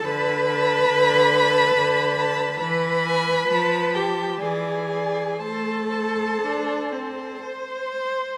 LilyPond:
<<
  \new Staff \with { instrumentName = "Violin" } { \time 3/4 \key a \minor \tempo 4 = 66 b''2. | b''4. g''8 gis''4 | a''2 r4 | }
  \new Staff \with { instrumentName = "Violin" } { \time 3/4 \key a \minor a''8 a''4 a''4 a''8 | r8 gis''8 a''8 a''8 d''8 d''8 | c''8 c''4 c''4 c''8 | }
  \new Staff \with { instrumentName = "Cello" } { \time 3/4 \key a \minor b'2. | b'4. g'8 gis'4 | a'2 r4 | }
  \new Staff \with { instrumentName = "Viola" } { \clef bass \time 3/4 \key a \minor d4 d4 d4 | e4 f4 e4 | a4 d'8 c'8 c''4 | }
>>